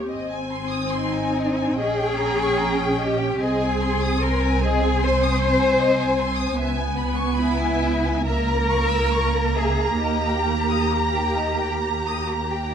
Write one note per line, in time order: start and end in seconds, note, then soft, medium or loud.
0.09 1.76 G#1 soft
0.09 1.76 C4 soft
0.09 0.30 D#5 soft
0.09 1.76 G#5 soft
0.32 0.52 G#5 soft
0.52 0.73 C6 soft
0.71 0.92 D#6 soft
0.92 1.77 D#4 medium
0.92 1.14 C6 soft
1.14 1.36 G#5 soft
1.36 1.58 D#5 soft
1.58 1.80 G#5 soft
1.78 3.42 A#1 soft
1.78 3.41 C#4 medium
1.78 3.02 G#4 medium
1.78 1.99 D#5 soft
1.78 3.42 G5 soft
2.01 2.21 G5 soft
2.19 2.40 A#5 soft
2.42 2.62 C#6 soft
2.59 2.80 A#5 soft
2.80 3.01 G5 soft
3.00 3.42 G4 medium
3.00 3.21 D#5 soft
3.18 3.40 G5 soft
3.39 6.55 C2 medium
3.39 6.55 C4 soft
3.39 4.23 G#4 medium
3.39 3.59 D#5 soft
3.39 8.22 G#5 soft
3.62 3.82 G#5 soft
3.82 4.02 C6 soft
4.03 4.23 D#6 soft
4.23 4.63 A#4 medium
4.23 4.43 C6 soft
4.42 4.63 G#5 soft
4.63 5.02 G#4 medium
4.63 4.83 D#5 soft
4.84 5.03 G#5 medium
5.02 6.59 C5 medium
5.02 5.20 C6 medium
5.23 5.42 D#6 soft
5.38 5.59 C6 soft
5.59 5.80 G#5 soft
5.80 6.00 D#5 medium
6.00 6.20 G#5 soft
6.19 6.39 C6 medium
6.38 6.58 D#6 soft
6.58 9.98 C#2 medium
6.58 8.23 B3 medium
6.58 6.77 E5 medium
6.77 6.98 G#5 medium
6.98 7.18 B5 soft
7.17 7.38 C#6 soft
7.35 8.23 E4 medium
7.35 7.58 B5 medium
7.59 7.82 G#5 soft
7.82 8.05 E5 soft
8.05 8.27 G#5 soft
8.27 12.74 A#3 medium
8.27 9.56 A#4 medium
8.27 8.47 E5 soft
8.27 12.74 A#5 medium
8.49 8.70 A#5 soft
8.70 8.91 C#6 soft
8.89 9.11 E6 soft
9.12 9.34 C#6 soft
9.34 9.56 A#5 soft
9.56 10.02 G#4 medium
9.56 9.79 E5 soft
9.81 10.03 A#5 soft
10.01 12.74 D#2 soft
10.01 12.74 G4 medium
10.01 10.23 D#5 soft
10.27 10.49 G5 soft
10.49 10.72 A#5 soft
10.70 10.93 D#6 soft
10.93 11.16 A#5 soft
11.14 11.38 G5 soft
11.36 11.60 D#5 soft
11.59 11.83 G5 soft
11.81 12.04 A#5 soft
12.07 12.30 D#6 soft
12.31 12.53 A#5 soft
12.52 12.74 G5 soft